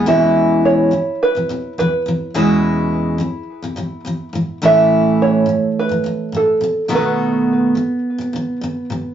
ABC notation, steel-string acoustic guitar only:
X:1
M:4/4
L:1/16
Q:1/4=105
K:E
V:1 name="Steel-string acoustic guitar" clef=bass
[E,,B,,E,G,CE]6 [E,,B,,E,]2 z [E,,B,,E,] [E,,B,,E,]2 [E,,B,,E,]2 [E,,B,,E,]2 | [E,,B,,E,G,CE]6 [E,,B,,E,]2 z [E,,B,,E,] [E,,B,,E,]2 [E,,B,,E,]2 [A,,E,]2 | [A,,E,A,CE]6 [A,,E,]2 z [A,,E,] [A,,E,]2 [A,,E,]2 [B,,D,]2 | [B,,D,A,B,F]6 [B,,D,]2 z [B,,D,] [B,,D,]2 [B,,D,]2 [B,,D,]2 |]